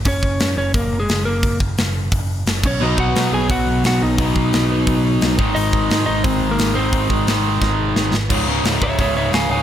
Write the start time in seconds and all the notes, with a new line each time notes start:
0.05 F#1 C#4 C#5, kick, open hi-hat
0.23 F#1, kick
0.40 F#2, snare, open hi-hat
0.57 F#1 C#4 C#5
0.74 F#1 A#3 A#4, kick, open hi-hat
0.92 F#1
1.00 G#3 G#4
1.09 F#1, snare, open hi-hat
1.25 F#1 A#3 A#4
1.43 F#1, kick, open hi-hat
1.60 F#1, kick
1.78 F#1, snare, open hi-hat
2.12 F#1, kick, open hi-hat
2.46 F#1, snare, open hi-hat
2.63 B1 C#4 C#5, kick, crash
2.80 B1 B2 F#3 B3 D#4 D#5
2.98 B1 F#4 F#5, kick
3.15 B2, snare, open hi-hat
3.32 B1 B2 F#3 B3 G#4 G#5
3.50 B1 F#4 F#5, kick, open hi-hat
3.67 B1
3.84 B1 F#4 F#5, snare, open hi-hat
4.02 B1 D#4 D#5
4.18 B1 B2 F#3 B3, kick, open hi-hat
4.35 B1, kick
4.53 B1, snare, open hi-hat
4.70 B2 F#3 B3
4.87 B1, kick, open hi-hat
5.21 B1, snare, open hi-hat
5.38 G#1 G#2 D#3 G#3, kick
5.55 G#1 D#4 D#5, open hi-hat
5.73 G#1, kick
5.90 G#2 D#3 G#3, snare, open hi-hat
6.06 G#1 D#4 D#5
6.23 G#1 C4 C5, kick, open hi-hat
6.42 G#1
6.51 A#3 A#4
6.59 G#1, snare, open hi-hat
6.74 G#1 G#2 D#3 G#3 C4 C5
6.93 G#1, kick, open hi-hat
7.10 G#1, kick
7.26 G#1 G#2 D#3 G#3, snare, open hi-hat
7.61 G#1, kick, snare
7.95 G#1, snare
8.13 G#1, snare
8.29 C#1 C#2 G#2 C#3, kick, crash
8.46 C#1 C#2 G#2 C#3
8.64 C#1 C#2 G#2 C#3, snare, open hi-hat
8.82 C#1 C#2 G#2 C#3 C#5 E5, kick
8.99 C#1 C#2 G#2 C#3 C#5 E5, kick, open hi-hat
9.15 C#1 C#2 G#2 C#3 C#5 E5
9.32 C#1 C#2 G#2 C#3 F5 G#5, snare, open hi-hat
9.50 C#1 C#2 G#2 C#3 F5 G#5